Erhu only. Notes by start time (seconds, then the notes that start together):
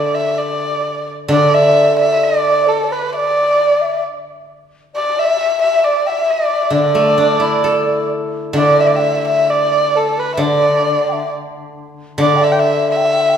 Already playing: D5
0.14 E5
0.38 D5
1.33 D5
1.54 E5
1.99 E5
2.23 D5
2.69 A4
2.92 B4
3.16 D5
4.96 D5
5.19 E5
5.62 E5
5.84 D5
6.07 E5
6.30 D5
6.75 D5
8.58 D5
8.80 E5
8.87 D5
8.96 E5
9.28 E5
9.50 D5
9.96 A4
10.19 B4
10.34 E5
10.42 D5
12.21 D5
12.44 E5
12.52 G5
12.59 E5
12.91 E5